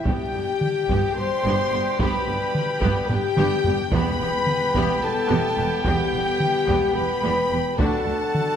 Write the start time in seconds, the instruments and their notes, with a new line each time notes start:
0.05 double bass section G1, cello section G2, trombone section B2 G3, woodwind section G3 D4 G4 G5, viola section B3 G4, french horn section G4, violin section G5, trumpet section G5, flute G5, taiko
0.33 double bass section G1, cello section G2, viola section B3 G4
0.61 taiko mid
0.89 double bass section G1, cello section G2, viola section B3 G4, taiko
1.16 double bass section G1, cello section G2, viola section B3 G4, french horn section C5, violin section C6, flute C6
1.45 double bass section G1, cello section G2, viola section B3 G4
1.72 double bass section G1, cello section G2, viola section B3 G4
1.98 double bass section G1, cello section G2, viola section B3 G4, french horn section B4, flute B5, violin section B5, taiko
2.27 double bass section G1, cello section G2, viola section B3 G4
2.55 taiko mid
2.82 double bass section G1, cello section G2, viola section B3 G4, taiko
3.09 double bass section G1, cello section G2, viola section B3 G4, french horn section G4, flute G5, violin section G5, taiko low-mid
3.37 double bass section G1, cello section G2, viola section B3 G4, taiko mid
3.64 double bass section G1, cello section G2, viola section B3 G4, taiko low
3.92 double bass section E1, cello section E2, timpani E2, trombone section G3 B3, woodwind section B3 E4 G4 G5, viola section B3 G4, french horn section B4, trumpet section G5, flute B5, violin section B5, taiko
4.20 double bass section E1, cello section E2, viola section B3 G4
4.47 taiko mid
4.74 double bass section E1, cello section E2, viola section B3 G4, taiko
5.01 double bass section E1, cello section E2, viola section B3 G4, french horn section A4, violin section A5, flute A5
5.29 double bass section E1, cello section E2, viola section B3 G4
5.57 double bass section E1, cello section E2, viola section B3 G4
5.83 double bass section E1, cello section E2, viola section B3 G4, french horn section G4, flute G5, violin section G5, taiko
6.13 double bass section E1, cello section E2, viola section B3 G4
6.40 taiko mid
6.67 double bass section E1, cello section E2, viola section B3 G4, taiko
6.94 double bass section E1, cello section E2, viola section B3 G4, french horn section B4, flute B5, violin section B5
7.23 double bass section E1, cello section E2, viola section B3 G4
7.50 double bass section E1, cello section E2, viola section B3 G4
7.77 double bass section D2, cello section D2, trombone section F#3 D4, viola section D4 F#4, woodwind section D4 F#4 A4 F#5, french horn section A4, trumpet section F#5, violin section A5, flute A5, taiko
8.06 cello section D2, double bass section D2, viola section D4 F#4
8.35 taiko mid